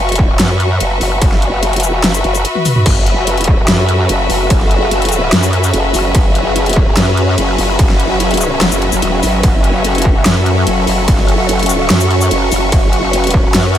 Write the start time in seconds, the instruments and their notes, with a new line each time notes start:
Already playing: wobble bass F#1, string section F#4 B4 E5 C#6
0.09 closed hi-hat
0.12 closed hi-hat
0.16 kick, closed hi-hat
0.39 wobble bass F#2, snare, closed hi-hat, ride
0.60 closed hi-hat
0.80 wobble bass F#1, closed hi-hat, ride
1.01 wobble bass F#1, open hi-hat
1.22 wobble bass F#1, kick, closed hi-hat, ride
1.32 snare
1.42 closed hi-hat
1.63 closed hi-hat, ride
1.73 closed hi-hat
1.76 wobble bass F1, closed hi-hat
1.80 closed hi-hat, shaker
2.04 wobble bass F#1, snare, closed hi-hat, ride
2.14 shaker
2.24 wobble bass F#1, closed hi-hat
2.35 closed hi-hat, shaker
2.45 closed hi-hat, ride
2.55 high tom
2.65 open hi-hat, mid tom, shaker
2.76 mid tom
2.86 wobble bass F#1, supersaw synth F#3 C#4 G#4 A4, kick, closed hi-hat, crash, ride
3.06 closed hi-hat
3.27 closed hi-hat, ride
3.37 closed hi-hat
3.41 closed hi-hat
3.44 kick, closed hi-hat
3.68 wobble bass F#2, snare, closed hi-hat, ride
3.89 closed hi-hat
4.09 wobble bass F#1, closed hi-hat, ride
4.30 wobble bass F#1, open hi-hat
4.50 wobble bass F#1, kick, closed hi-hat, ride
4.61 snare
4.71 closed hi-hat
4.91 closed hi-hat, ride
5.02 closed hi-hat
5.05 closed hi-hat
5.09 closed hi-hat, shaker
5.32 wobble bass F#2, snare, closed hi-hat, ride
5.43 shaker
5.53 closed hi-hat
5.64 shaker
5.74 wobble bass F#1, closed hi-hat, ride
5.94 wobble bass F#1, open hi-hat, shaker
6.15 wobble bass F#1, supersaw synth B4, kick, closed hi-hat, ride
6.35 closed hi-hat
6.56 closed hi-hat, ride
6.66 closed hi-hat
6.69 closed hi-hat
6.73 kick, closed hi-hat
6.97 wobble bass F#2, snare, closed hi-hat, ride
7.17 closed hi-hat
7.38 wobble bass F#1, closed hi-hat, ride
7.58 wobble bass F#1, open hi-hat
7.79 wobble bass F#1, kick, closed hi-hat, ride
7.90 snare
8.00 closed hi-hat
8.20 closed hi-hat, ride
8.31 closed hi-hat
8.34 closed hi-hat
8.37 closed hi-hat, shaker
8.61 wobble bass F#1, snare, closed hi-hat, ride
8.72 wobble bass F#1, shaker
8.82 closed hi-hat
8.92 wobble bass F#1, shaker
9.02 wobble bass E1, closed hi-hat, ride
9.23 wobble bass G#1, open hi-hat, shaker
9.43 wobble bass F#1, supersaw synth F#4 A4, kick, closed hi-hat, ride
9.64 closed hi-hat
9.79 string section C#6
9.85 closed hi-hat, ride
9.95 closed hi-hat
9.98 wobble bass F1, closed hi-hat
10.02 kick, closed hi-hat
10.26 wobble bass F#2, snare, closed hi-hat, ride
10.46 closed hi-hat
10.67 wobble bass F#1, closed hi-hat, ride
10.87 wobble bass F#1, open hi-hat
11.08 wobble bass F#1, kick, closed hi-hat, ride
11.18 snare
11.28 closed hi-hat
11.49 closed hi-hat, ride
11.59 closed hi-hat
11.63 closed hi-hat
11.66 closed hi-hat, shaker
11.90 wobble bass F#2, snare, closed hi-hat, ride
12.00 shaker
12.11 closed hi-hat
12.21 shaker
12.31 wobble bass F#1, closed hi-hat, ride
12.52 wobble bass F#1, open hi-hat, shaker
12.72 wobble bass F#1, supersaw synth B4, kick, closed hi-hat, ride
12.93 closed hi-hat
13.13 closed hi-hat, ride
13.24 closed hi-hat
13.27 closed hi-hat
13.30 kick, closed hi-hat
13.54 wobble bass F#2, snare, closed hi-hat, ride
13.75 closed hi-hat